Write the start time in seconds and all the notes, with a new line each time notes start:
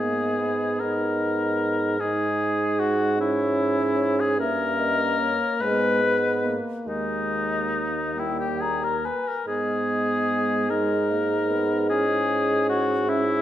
Already playing: G#2 B3 G#4 D#5
0.00 A#3
0.39 B3
0.80 D#4 A#4 D#5
1.99 G#3 D#4 G#4 D#5
2.80 F#4
3.19 C#4 E4 C#5
4.21 G#4
4.39 G2 A#3 C#4 A#4 E5
4.80 D#5
5.21 C#5
5.61 G#2 G#3 B3 B4 D#5
6.02 B3
6.45 A#3
6.87 D#2 G#3 A#3 D#4 D#5
8.16 G3 A#3 E4 G5
8.40 G4
8.61 G#4 A#5
8.84 A#4
9.05 B4 G#5
9.28 A#4
9.46 G#2 G#3 B3 G#4 D#5
10.70 G#3 D#4 A#4
11.11 A#3
11.50 B3
11.90 C#4 E4 G#4
12.70 F#4
13.06 C#4 E4 E5